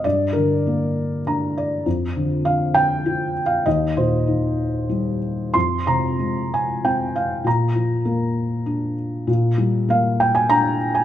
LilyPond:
<<
  \new Staff \with { instrumentName = "Felt piano" } { \time 3/4 \key g \phrygian \tempo 4 = 99 d''8 bes'4. bes''8 d''8 | r4 f''8 g''8~ \tuplet 3/2 { g''4 f''8 } | ees''8 c''4. r4 | c'''8 bes''4 aes''8 g''8 f''8 |
bes''4 r2 | r4 f''8 g''16 aes''16 bes''8. aes''16 | }
  \new Staff \with { instrumentName = "Felt piano" } { \clef bass \time 3/4 \key g \phrygian g,8 d8 bes4 d'4 | f,8 d8 d'4 f'4 | ees,8 bes,8 ees4 g4 | f,8 c8 aes4 c'4 |
bes,8 f8 bes4 d'4 | bes,8 g8 bes4 d'4 | }
>>